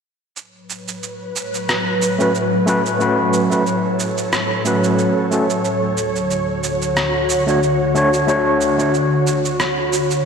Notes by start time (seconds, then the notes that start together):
0.36 A2 F#3 B4 C#5, shaker
0.70 shaker
0.88 shaker
1.03 shaker
1.36 shaker
1.54 shaker
1.69 cross-stick, shaker
2.02 shaker
2.19 A3 C#4 F#4 B4, shaker
2.35 shaker
2.66 A3 C#4 F#4 B4, shaker
2.86 shaker
2.99 A3 C#4 F#4 A4 B4, shaker
3.34 shaker
3.50 A3 C#4 F#4 B4, shaker
3.67 shaker
4.00 shaker
4.18 shaker
4.33 cross-stick, shaker
4.65 A3 C#4 F#4 B4, shaker
4.84 shaker
4.99 shaker
5.31 A3 C#4 F#4 A4, shaker
5.50 shaker
5.65 D2 D3 F#4, shaker
5.98 shaker
6.16 shaker
6.31 shaker
6.64 shaker
6.82 shaker
6.97 cross-stick, shaker
7.30 shaker
7.47 A3 D4 F#4 C#5, shaker
7.63 shaker
7.94 A3 D4 F#4 C#5, shaker
8.14 shaker
8.27 A3 D4 F#4 C#5, shaker
8.61 shaker
8.78 A3 D4 F#4 C#5, shaker
8.94 shaker
9.27 shaker
9.45 shaker
9.60 cross-stick, shaker
9.93 shaker
10.11 shaker